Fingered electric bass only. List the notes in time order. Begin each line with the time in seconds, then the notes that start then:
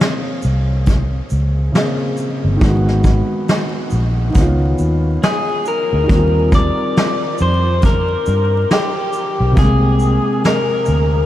0.45 C2
1.32 C#2
2.44 G1
2.62 G#1
3.92 A#1
4.36 C#2
4.80 D#2
5.93 D2
6.10 D#2
7.41 F2
8.28 G2
9.40 B1
9.57 C2
10.88 D2